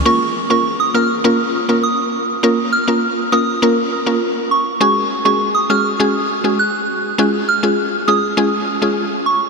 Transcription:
<<
  \new Staff \with { instrumentName = "Synth bell" } { \time 4/4 \key bes \minor \tempo 4 = 101 des'''8 r16 des'''16 r16 ees'''16 f'''16 r4 r16 ees'''8. r16 | r8 f'''16 r8. ees'''8 r4. des'''16 r16 | des'''8 r16 des'''16 r16 ees'''16 f'''16 r4 r16 ges'''8. r16 | r8 f'''16 r8. ees'''8 r4. des'''16 r16 | }
  \new Staff \with { instrumentName = "Synth pluck" } { \time 4/4 \key bes \minor <bes des' f' bes'>16 r8 <bes des' f' bes'>8. <bes des' f' bes'>8 <bes des' f' bes'>16 r8 <bes des' f' bes'>16 r4 | <bes des' f' bes'>16 r8 <bes des' f' bes'>8. <bes des' f' bes'>8 <bes des' f' bes'>16 r8 <bes des' f' bes'>16 r4 | <aes des' ges' aes'>16 r8 <aes des' ges' aes'>8. <aes des' ges' aes'>8 <aes des' ges' aes'>16 r8 <aes des' ges' aes'>16 r4 | <aes des' f' aes'>16 r8 <aes des' f' aes'>8. <aes des' f' aes'>8 <aes des' f' aes'>16 r8 <aes des' f' aes'>16 r4 | }
>>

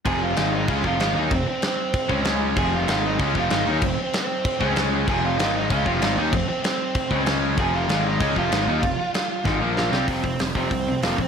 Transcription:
<<
  \new Staff \with { instrumentName = "Lead electric guitar" } { \time 4/4 \key f \minor \tempo 4 = 191 <aes' aes''>8 <f' f''>8 <f' f''>8 <ees' ees''>8 <f' f''>8 <f' f''>4 <des' des''>8 | <c' c''>8 <c' c''>8 <c' c''>2 r4 | <aes' aes''>8 <f' f''>8 <f' f''>8 <ees' ees''>8 <f' f''>8 <f' f''>4 <des' des''>8 | <c' c''>8 <c' c''>8 <c' c''>2 r4 |
<aes' aes''>8 <f' f''>8 <f' f''>8 <ees' ees''>8 <f' f''>8 <f' f''>4 <des' des''>8 | <c' c''>8 <c' c''>8 <c' c''>2 r4 | <aes' aes''>8 <f' f''>8 <f' f''>8 <ees' ees''>4 <f' f''>4.~ | <f' f''>2. <f' f''>4 |
<c' c''>4 r8 <c' c''>4. <bes bes'>8 <c' c''>8 | }
  \new Staff \with { instrumentName = "Distorted electric guitar" } { \clef bass \time 4/4 \key f \minor <f, c f>4 <aes, ees aes>4 <des aes des'>8 <f, c f>8 <aes, ees aes>8 <ees bes ees'>8 | <f, c>8 r2 <des aes des'>4. | <f, c f>4 <aes, ees aes>4 <des aes des'>8 <f, c f>8 <aes, ees aes>8 <ees bes ees'>8 | <f, c>8 r2 <des aes des'>4. |
<f, c f>4 <aes, ees aes>4 <des aes des'>8 <f, c f>8 <aes, ees aes>8 <ees bes ees'>8 | <f, c>8 r2 <des aes des'>4. | <f, c f>4 <aes, ees aes>4 <des aes des'>8 <f, c f>8 <aes, ees aes>8 <ees bes ees'>8 | <f, c>8 r4. <aes, ees aes>8 <bes, f bes>4 <c g c'>8 |
<f, c f>8 <f, c>8 <f, c>8 <f, c f>8 <f, c>8 <f, c>8 <f, c f>8 <f, c>8 | }
  \new Staff \with { instrumentName = "Overdriven electric guitar" } { \clef bass \time 4/4 \key f \minor <f, c f>4 <aes, ees aes>4 <des aes des'>8 <f, c f>8 <aes, ees aes>8 <ees bes ees'>8 | <f, c>8 r2 <des aes des'>4. | <f, c f>4 <aes, ees aes>4 <des aes des'>8 <f, c f>8 <aes, ees aes>8 <ees bes ees'>8 | <f, c>8 r2 <des aes des'>4. |
<f, c f>4 <aes, ees aes>4 <des aes des'>8 <f, c f>8 <aes, ees aes>8 <ees bes ees'>8 | <f, c>8 r2 <des aes des'>4. | <f, c f>4 <aes, ees aes>4 <des aes des'>8 <f, c f>8 <aes, ees aes>8 <ees bes ees'>8 | <f, c>8 r4. <aes, ees aes>8 <bes, f bes>4 <c g c'>8 |
<f, c f>8 <f, c>8 <f, c>8 <f, c f>8 <f, c>8 <f, c>8 <f, c f>8 <f, c>8 | }
  \new Staff \with { instrumentName = "Overdriven electric guitar" } { \clef bass \time 4/4 \key f \minor <f, c f>4 <aes, ees aes>4 <des aes des'>8 <f, c f>8 <aes, ees aes>8 <ees bes ees'>8 | <f, c>8 r2 <des aes des'>4. | <f, c f>4 <aes, ees aes>4 <des aes des'>8 <f, c f>8 <aes, ees aes>8 <ees bes ees'>8 | <f, c>8 r2 <des aes des'>4. |
<f, c f>4 <aes, ees aes>4 <des aes des'>8 <f, c f>8 <aes, ees aes>8 <ees bes ees'>8 | <f, c>8 r2 <des aes des'>4. | <f, c f>4 <aes, ees aes>4 <des aes des'>8 <f, c f>8 <aes, ees aes>8 <ees bes ees'>8 | <f, c>8 r4. <aes, ees aes>8 <bes, f bes>4 <c g c'>8 |
r1 | }
  \new Staff \with { instrumentName = "Picked electric bass" } { \clef bass \time 4/4 \key f \minor f,,4 aes,,4 des,8 f,,8 aes,,8 ees,8 | f,,8 r2 des,4. | f,,4 aes,,4 des,8 f,,8 aes,,8 ees,8 | f,,8 r2 des,4. |
f,,4 aes,,4 des,8 f,,8 aes,,8 ees,8 | f,,8 r2 des,4. | f,,4 aes,,4 des,8 f,,8 aes,,8 ees,8 | f,,8 r4. aes,,8 bes,,4 c,8 |
f,,8 f,,8 f,,8 f,,8 c,4 f,,8 bes,,8 | }
  \new DrumStaff \with { instrumentName = "Drums" } \drummode { \time 4/4 <cymc bd>4 <cymc sn>4 <cymc bd>8 bd8 <cymc sn>4 | <cymc bd>4 <cymc sn>4 <cymc bd>8 bd8 <cymc sn>4 | <cymc bd>4 <cymc sn>4 <cymc bd>8 bd8 <cymc sn>4 | <cymc bd>4 <cymc sn>4 <cymc bd>8 bd8 <cymc sn>4 |
<cymc bd>4 <cymc sn>4 <cymc bd>8 bd8 <cymc sn>4 | <cymc bd>4 <cymc sn>4 <cymc bd>8 bd8 <cymc sn>4 | <cymc bd>4 <cymc sn>4 <cymc bd>8 bd8 <cymc sn>4 | <cymc bd>4 <cymc sn>4 <bd sn>4 sn8 sn8 |
<hho bd>8 bd8 <hho sn>8 bd8 <hho bd>4 <hho sn>8 bd8 | }
>>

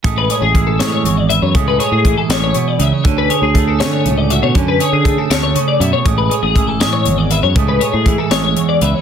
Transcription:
<<
  \new Staff \with { instrumentName = "Clean electric guitar" } { \time 6/8 \key a \major \tempo 4. = 80 r16 b'16 cis''16 gis'8 a'16 cis''16 cis''8 d''16 e''16 cis''16 | r16 b'16 cis''16 gis'8 a'16 cis''16 cis''8 d''16 e''16 cis''16 | r16 b'16 cis''16 gis'8 a'16 cis''16 cis''8 d''16 e''16 cis''16 | r16 b'16 cis''16 gis'8 a'16 cis''16 cis''8 d''16 e''16 cis''16 |
r16 b'16 cis''16 gis'8 a'16 cis''16 cis''8 d''16 e''16 cis''16 | r16 b'16 cis''16 gis'8 a'16 cis''16 cis''8 d''16 e''16 cis''16 | }
  \new Staff \with { instrumentName = "Clean electric guitar" } { \clef bass \time 6/8 \key a \major << { gis8 gis'4 gis4 b'8 | gis8 gis'2~ gis'8 | cis'8 gis'4 cis'4 fis'8 | cis'8 gis'2~ gis'8 |
gis8 gis'4 gis4 b'8 | gis8 gis'4 gis4 b'8 | } \\ { a,4 e4 e,4 | a,4 e8 a,8 b,8 cis8 | d4 a4 a,4 | d4 a8 d8 cis8 b,8 |
a,4 e4 e,4 | a,4 e4 e,4 | } >> }
  \new Staff \with { instrumentName = "Picked electric bass" } { \clef bass \time 6/8 \key a \major a,,8 r16 a,,8. a,8 gis,,8. fis,16 | cis,8 r16 a,8 r16 a,,8 r8 cis,16 r16 | d,8 r16 d,8. d8 cis,8. b,16 | fis,8 r16 d8 r16 d,8 r8 fis,16 r16 |
a,,8 r16 a,,8. a,8 gis,,8. fis,16 | cis,8 r16 a,8 r16 a,,8 r8 cis,16 r16 | }
  \new DrumStaff \with { instrumentName = "Drums" } \drummode { \time 6/8 <hh bd>8 hh8 <hh bd>8 <hh sn>8 hh8 hh8 | <hh bd>8 hh8 <hh bd>8 <hh sn>8 hh8 hh8 | <hh bd>8 hh8 <hh bd>8 <hh sn>8 hh8 hh8 | <hh bd>8 hh8 <hh bd>8 <hh sn>8 hh8 hh8 |
<hh bd>8 hh8 <hh bd>8 <hh sn>8 hh8 hh8 | <hh bd>8 hh8 <hh bd>8 <hh sn>8 hh8 hh8 | }
>>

